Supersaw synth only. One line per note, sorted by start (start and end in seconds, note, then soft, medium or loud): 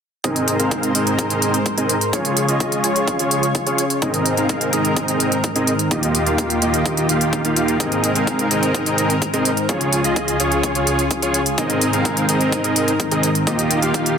0.24 0.57 C4 medium
0.24 0.57 D#4 medium
0.24 0.57 G#4 medium
0.24 0.57 A#4 medium
0.24 0.57 D#5 medium
0.60 0.92 C4 medium
0.60 0.92 D#4 medium
0.60 0.92 G#4 medium
0.60 0.92 A#4 medium
0.60 0.92 F5 medium
0.95 1.28 C4 medium
0.95 1.28 D#4 medium
0.95 1.28 G#4 medium
0.95 1.28 A#4 medium
0.95 1.28 D#5 medium
1.30 1.59 C4 medium
1.30 1.59 D#4 medium
1.30 1.59 G#4 medium
1.30 1.59 A#4 medium
1.30 1.59 D#5 medium
1.78 1.95 C4 medium
1.78 1.95 D#4 medium
1.78 1.95 G#4 medium
1.78 1.95 A#4 medium
1.78 1.95 D#5 loud
2.13 2.46 F4 medium
2.13 2.46 G#4 medium
2.13 2.46 C#5 medium
2.48 2.81 F4 medium
2.48 2.81 G#4 medium
2.48 2.81 D#5 medium
2.84 3.17 F4 medium
2.84 3.17 G#4 medium
2.84 3.17 C#5 medium
3.19 3.48 F4 medium
3.19 3.48 G#4 medium
3.19 3.48 C#5 medium
3.67 3.84 F4 medium
3.67 3.84 G#4 medium
3.67 3.84 C#5 loud
4.02 4.35 C4 medium
4.02 4.35 D#4 medium
4.02 4.35 G#4 medium
4.02 4.35 A#4 medium
4.02 4.35 D#5 medium
4.38 4.70 C4 medium
4.38 4.70 D#4 medium
4.38 4.70 G#4 medium
4.38 4.70 A#4 medium
4.38 4.70 F5 medium
4.73 5.06 C4 medium
4.73 5.06 D#4 medium
4.73 5.06 G#4 medium
4.73 5.06 A#4 medium
4.73 5.06 D#5 medium
5.08 5.37 C4 medium
5.08 5.37 D#4 medium
5.08 5.37 G#4 medium
5.08 5.37 A#4 medium
5.08 5.37 D#5 medium
5.56 5.73 C4 medium
5.56 5.73 D#4 medium
5.56 5.73 G#4 medium
5.56 5.73 A#4 medium
5.56 5.73 D#5 loud
5.91 6.24 A#3 medium
5.91 6.24 D#4 medium
5.91 6.24 F4 medium
5.91 6.24 G4 medium
5.91 6.24 D#5 medium
6.26 6.59 A#3 medium
6.26 6.59 D#4 medium
6.26 6.59 F4 medium
6.26 6.59 G4 medium
6.26 6.59 F5 medium
6.62 6.94 A#3 medium
6.62 6.95 D#4 medium
6.62 6.95 F4 medium
6.62 6.94 G4 medium
6.62 6.95 D#5 medium
6.97 7.07 A#3 medium
6.97 7.07 D#4 medium
6.97 7.07 F4 medium
6.97 7.07 G4 medium
6.97 7.07 D#5 medium
7.09 7.42 A#3 medium
7.09 7.42 D#4 medium
7.09 7.42 F4 medium
7.09 7.42 G4 medium
7.09 7.42 F5 medium
7.45 7.55 A#3 medium
7.45 7.55 D#4 medium
7.45 7.55 F4 medium
7.45 7.55 G4 medium
7.45 7.55 F5 medium
7.56 7.77 A#3 medium
7.56 7.77 D#4 medium
7.56 7.77 F4 medium
7.56 7.77 G4 medium
7.56 7.77 F5 loud
7.80 8.13 C4 medium
7.80 8.13 D#4 medium
7.80 8.13 G#4 medium
7.80 8.13 A#4 medium
7.80 8.13 D#5 medium
8.15 8.48 C4 medium
8.15 8.48 D#4 medium
8.15 8.48 G#4 medium
8.15 8.48 A#4 medium
8.15 8.48 F5 medium
8.51 8.83 C4 medium
8.51 8.83 D#4 medium
8.51 8.83 G#4 medium
8.51 8.83 A#4 medium
8.51 8.83 D#5 medium
8.86 9.15 C4 medium
8.86 9.15 D#4 medium
8.86 9.15 G#4 medium
8.86 9.15 A#4 medium
8.86 9.15 D#5 medium
9.33 9.51 C4 medium
9.33 9.51 D#4 medium
9.33 9.51 G#4 medium
9.33 9.51 A#4 medium
9.33 9.51 D#5 loud
9.69 10.02 F4 medium
9.69 10.02 G#4 medium
9.69 10.02 C#5 medium
10.04 10.37 F4 medium
10.04 10.37 G#4 medium
10.04 10.37 D#5 medium
10.40 10.72 F4 medium
10.40 10.72 G#4 medium
10.40 10.72 C#5 medium
10.75 11.04 F4 medium
10.75 11.04 G#4 medium
10.75 11.04 C#5 medium
11.23 11.40 F4 medium
11.23 11.40 G#4 medium
11.23 11.40 C#5 loud
11.58 11.91 C4 medium
11.58 11.91 D#4 medium
11.58 11.91 G#4 medium
11.58 11.91 A#4 medium
11.58 11.91 D#5 medium
11.93 12.26 C4 medium
11.93 12.26 D#4 medium
11.93 12.26 G#4 medium
11.93 12.26 A#4 medium
11.93 12.26 F5 medium
12.29 12.61 C4 medium
12.29 12.61 D#4 medium
12.29 12.61 G#4 medium
12.29 12.61 A#4 medium
12.29 12.61 D#5 medium
12.64 12.93 C4 medium
12.64 12.93 D#4 medium
12.64 12.93 G#4 medium
12.64 12.93 A#4 medium
12.64 12.93 D#5 medium
13.11 13.29 C4 medium
13.11 13.29 D#4 medium
13.11 13.29 G#4 medium
13.11 13.29 A#4 medium
13.11 13.29 D#5 loud
13.47 13.80 A#3 medium
13.47 13.80 D#4 medium
13.47 13.80 F4 medium
13.47 13.80 G4 medium
13.47 13.80 D#5 medium
13.82 14.15 A#3 medium
13.82 14.15 D#4 medium
13.82 14.15 F4 medium
13.82 14.15 G4 medium
13.82 14.15 F5 medium